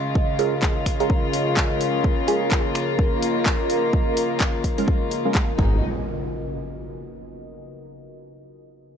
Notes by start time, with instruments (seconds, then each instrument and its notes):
Already playing: string section C#3 G#3 F4, ambient pad C#3 F4 A#4 D#5, synth stab G#3 C#4 F4 G#4
0.15 kick
0.39 synth stab G#3 C#4 F4 A#4, open hi-hat
0.63 finger snap, kick, clap
0.86 finger snap, kick, open hi-hat
1.00 synth stab G#3 C#4 F4 A#4, open hi-hat
1.10 kick
1.33 open hi-hat
1.57 kick, clap
1.81 open hi-hat
2.04 string section A#3, kick
2.28 synth stab G#3 C#4 F4 G#4, open hi-hat
2.52 finger snap, kick, clap
2.75 finger snap, open hi-hat
2.99 kick
3.22 open hi-hat
3.46 kick, clap
3.70 open hi-hat
3.93 kick
4.17 open hi-hat
4.40 finger snap, kick, clap
4.64 kick, open hi-hat
4.78 synth stab G#3 C#4 F4 A#4, open hi-hat
4.88 kick
5.11 open hi-hat
5.25 synth stab G#3 C#4 F4 A#4
5.35 kick, clap
5.59 fm bass G#1, string section B2 G#3 D#4, synth stab G#3 B3 D#4 G#4, ambient pad F#4, kick, impact
5.67 ambient pad B4
5.98 ambient pad D#5